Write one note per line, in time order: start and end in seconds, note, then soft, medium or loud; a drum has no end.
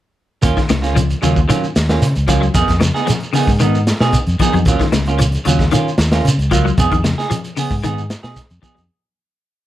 0.42 0.54 D#2 medium
0.42 0.59 A#3 medium
0.42 0.59 C#4 medium
0.42 0.59 F4 medium
0.42 muted clean electric guitar stroke medium
0.42 kick medium
0.42 closed hi-hat medium
0.42 shekere medium
0.57 0.67 D#3 medium
0.57 kick medium
0.57 snare soft
0.57 shekere soft
0.69 1.13 C#2 medium
0.69 0.90 C#3 medium
0.69 snare medium
0.69 closed hi-hat soft
0.69 shekere medium
0.82 0.99 A#3 soft
0.82 0.98 C#4 medium
0.82 0.98 F4 medium
0.82 snare soft
0.82 closed hi-hat soft
0.82 shekere soft
0.96 1.17 F3 medium
0.96 closed hi-hat medium
0.96 shekere medium
1.10 closed hi-hat soft
1.10 shekere soft
1.22 1.44 D#2 medium
1.22 1.44 C#3 medium
1.22 1.38 F#3 medium
1.22 1.38 A#3 medium
1.22 1.39 C#4 medium
1.22 1.39 F4 medium
1.22 closed hi-hat soft
1.22 shekere medium
1.36 kick medium
1.36 shekere soft
1.48 1.70 D#3 medium
1.48 1.65 F#3 medium
1.48 1.65 A#3 medium
1.48 1.65 C#4 medium
1.48 1.65 F4 medium
1.48 closed hi-hat medium
1.48 shekere medium
1.64 shekere soft
1.76 1.97 D#2 medium
1.76 snare medium
1.76 closed hi-hat medium
1.76 shekere medium
1.89 2.05 A#3 soft
1.89 2.05 C#4 medium
1.89 2.05 F4 medium
1.89 snare medium
1.89 closed hi-hat soft
1.89 shekere soft
2.02 2.13 C#3 medium
2.02 snare soft
2.02 closed hi-hat medium
2.02 shekere medium
2.15 2.48 C#2 medium
2.15 closed hi-hat soft
2.15 shekere soft
2.27 2.39 F3 medium
2.27 2.44 F#3 medium
2.27 2.44 A#3 medium
2.27 2.45 C#4 medium
2.27 2.45 F4 medium
2.27 kick medium
2.27 closed hi-hat medium
2.27 shekere medium
2.41 2.52 F#3 medium
2.41 shekere soft
2.54 2.66 F2 loud
2.54 2.71 D#3 medium
2.54 2.71 B3 medium
2.54 2.71 D#4 medium
2.54 2.71 G#4 medium
2.54 kick medium
2.54 closed hi-hat medium
2.54 shekere medium
2.68 2.90 F2 medium
2.68 kick medium
2.68 snare soft
2.68 closed hi-hat soft
2.68 shekere soft
2.80 3.02 C#3 medium
2.80 snare medium
2.80 closed hi-hat soft
2.80 shekere medium
2.94 3.11 B3 soft
2.94 3.11 D#4 medium
2.94 3.10 G#4 medium
2.94 snare soft
2.94 shekere soft
3.06 3.28 F3 medium
3.06 snare soft
3.06 closed hi-hat medium
3.06 shekere medium
3.20 closed hi-hat soft
3.20 shekere soft
3.33 3.55 C#3 medium
3.33 3.50 D#3 medium
3.33 3.51 B3 medium
3.33 3.51 D#4 medium
3.33 3.51 G#4 medium
3.33 open hi-hat medium
3.33 shekere medium
3.47 3.91 G#2 medium
3.47 kick medium
3.47 shekere soft
3.59 3.82 D#3 medium
3.59 3.77 D#3 medium
3.59 3.78 B3 medium
3.59 3.78 D#4 medium
3.59 muted clean electric guitar stroke medium
3.59 closed hi-hat medium
3.59 shekere medium
3.75 shekere soft
3.87 snare medium
3.87 closed hi-hat soft
3.87 shekere medium
4.00 4.11 B2 medium
4.00 4.17 B3 soft
4.00 4.17 D#4 medium
4.00 4.17 G#4 medium
4.00 snare medium
4.00 shekere soft
4.13 muted fingered electric bass stroke soft
4.13 kick medium
4.13 closed hi-hat medium
4.13 shekere medium
4.27 4.38 F2 medium
4.27 closed hi-hat soft
4.27 shekere soft
4.39 4.57 D#3 medium
4.39 4.51 F3 medium
4.39 4.57 B3 medium
4.39 4.57 D#4 medium
4.39 4.57 G#4 medium
4.39 muted fingered electric bass stroke soft
4.39 kick medium
4.39 closed hi-hat soft
4.39 shekere medium
4.53 4.66 F2 medium
4.53 4.64 F#3 medium
4.53 closed hi-hat soft
4.53 shekere soft
4.65 4.77 D#2 medium
4.65 4.83 F#3 medium
4.65 4.83 A#3 medium
4.65 4.84 C#4 medium
4.65 4.84 F4 medium
4.65 kick medium
4.65 closed hi-hat medium
4.65 shekere medium
4.79 4.91 D#3 medium
4.79 muted fingered electric bass stroke soft
4.79 kick medium
4.79 snare soft
4.79 shekere soft
4.92 5.36 C#2 medium
4.92 5.14 C#3 medium
4.92 snare medium
4.92 closed hi-hat soft
4.92 shekere medium
5.06 5.24 A#3 soft
5.06 5.23 C#4 medium
5.06 5.23 F4 medium
5.06 closed hi-hat soft
5.06 shekere soft
5.18 5.41 F3 medium
5.18 closed hi-hat medium
5.18 shekere medium
5.32 closed hi-hat soft
5.32 shekere soft
5.45 5.68 D#2 medium
5.45 5.67 C#3 medium
5.45 5.63 F#3 medium
5.45 5.63 C#4 medium
5.45 5.63 F4 medium
5.45 muted clean electric guitar stroke medium
5.45 closed hi-hat soft
5.45 shekere medium
5.59 kick medium
5.59 snare soft
5.59 shekere soft
5.71 5.93 D#3 medium
5.71 5.89 A#3 medium
5.71 5.89 C#4 medium
5.71 5.89 F4 medium
5.71 muted clean electric guitar stroke medium
5.71 closed hi-hat medium
5.71 shekere medium
5.88 shekere soft
5.98 6.20 D#2 medium
5.98 snare medium
5.98 closed hi-hat soft
5.98 shekere medium
6.11 6.29 A#3 soft
6.11 6.29 C#4 soft
6.11 6.28 F4 medium
6.11 snare medium
6.11 closed hi-hat soft
6.11 shekere soft
6.25 6.36 C#3 medium
6.25 closed hi-hat medium
6.25 shekere medium
6.38 6.70 C#2 medium
6.38 closed hi-hat soft
6.38 shekere soft
6.51 6.62 F3 medium
6.51 6.68 F#3 medium
6.51 6.68 A#3 medium
6.51 6.68 F4 medium
6.51 muted clean electric guitar stroke medium
6.51 kick medium
6.51 closed hi-hat medium
6.51 shekere medium
6.65 6.76 F#3 medium
6.65 shekere soft
6.78 6.89 F2 medium
6.78 6.95 B3 medium
6.78 6.95 D#4 medium
6.78 6.95 G#4 medium
6.78 kick medium
6.78 closed hi-hat medium
6.78 shekere medium
6.92 7.13 F2 medium
6.92 7.02 D#3 medium
6.92 kick medium
6.92 closed hi-hat soft
6.92 shekere soft
7.04 7.25 C#3 medium
7.04 snare medium
7.04 closed hi-hat medium
7.04 shekere medium
7.18 7.34 D#4 soft
7.18 7.34 G#4 medium
7.18 snare soft
7.18 shekere soft
7.30 7.51 F3 medium
7.30 closed hi-hat medium
7.30 shekere medium
7.44 closed hi-hat soft
7.44 shekere soft
7.57 7.78 C#3 medium
7.57 7.74 B3 medium
7.57 7.74 G#4 medium
7.57 open hi-hat medium
7.57 shekere medium
7.71 8.14 G#2 medium
7.71 kick medium
7.71 shekere soft
7.83 8.05 D#3 medium
7.83 8.00 B3 medium
7.83 8.00 D#4 medium
7.83 8.00 G#4 medium
7.83 closed hi-hat medium
7.83 shekere medium
7.98 shekere soft
8.10 snare medium
8.10 closed hi-hat soft
8.10 shekere medium
8.23 8.34 B2 medium
8.23 8.40 D#4 soft
8.23 8.39 G#4 medium
8.23 snare medium
8.23 shekere soft
8.36 kick medium
8.36 snare soft
8.36 closed hi-hat medium
8.36 shekere medium
8.50 8.61 F2 medium
8.50 closed hi-hat soft
8.50 shekere soft
8.62 8.73 F3 medium
8.62 8.79 B3 medium
8.62 8.79 D#4 medium
8.62 8.79 G#4 medium
8.62 muted fingered electric bass stroke soft
8.62 kick medium
8.62 closed hi-hat soft
8.62 shekere medium
8.75 8.88 F2 medium
8.75 8.85 F#3 medium
8.75 closed hi-hat soft
8.75 shekere soft